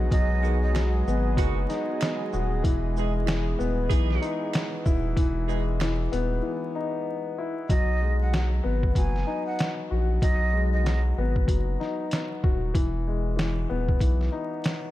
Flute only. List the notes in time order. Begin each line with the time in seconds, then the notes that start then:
0.11 D#5
0.62 D#5
7.69 D#5
8.21 F#5
8.97 G#5
9.46 F#5
10.22 D#5
10.73 D#5